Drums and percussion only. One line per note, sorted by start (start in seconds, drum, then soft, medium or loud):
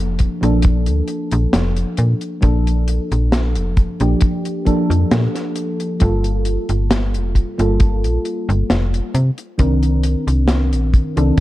0.19 kick medium
0.19 closed hi-hat medium
0.43 closed hi-hat soft
0.63 kick loud
0.63 closed hi-hat medium
0.86 closed hi-hat medium
1.08 closed hi-hat medium
1.32 closed hi-hat soft
1.53 snare loud
1.53 closed hi-hat loud
1.76 closed hi-hat medium
1.97 closed hi-hat medium
2.21 closed hi-hat soft
2.42 kick loud
2.42 closed hi-hat medium
2.67 closed hi-hat medium
2.88 closed hi-hat medium
3.12 closed hi-hat soft
3.32 snare loud
3.32 closed hi-hat loud
3.56 closed hi-hat medium
3.77 kick loud
3.77 closed hi-hat medium
4.00 closed hi-hat medium
4.21 kick loud
4.21 closed hi-hat medium
4.45 closed hi-hat medium
4.66 kick medium
4.66 closed hi-hat medium
4.91 closed hi-hat soft
5.11 snare loud
5.11 closed hi-hat medium
5.35 snare soft
5.35 closed hi-hat medium
5.56 closed hi-hat medium
5.80 closed hi-hat soft
6.00 kick loud
6.00 closed hi-hat medium
6.24 closed hi-hat medium
6.45 closed hi-hat medium
6.69 closed hi-hat medium
6.91 snare loud
6.91 closed hi-hat loud
7.14 closed hi-hat soft
7.35 kick medium
7.35 closed hi-hat medium
7.59 closed hi-hat soft
7.80 kick loud
7.80 closed hi-hat medium
8.04 closed hi-hat medium
8.25 closed hi-hat soft
8.50 closed hi-hat soft
8.70 snare loud
8.70 closed hi-hat medium
8.94 closed hi-hat soft
9.15 closed hi-hat medium
9.38 closed hi-hat soft
9.59 kick loud
9.59 closed hi-hat loud
9.83 closed hi-hat soft
10.03 closed hi-hat medium
10.28 closed hi-hat medium
10.48 snare loud
10.48 closed hi-hat medium
10.73 closed hi-hat soft
10.94 kick medium
10.94 closed hi-hat medium
11.17 closed hi-hat medium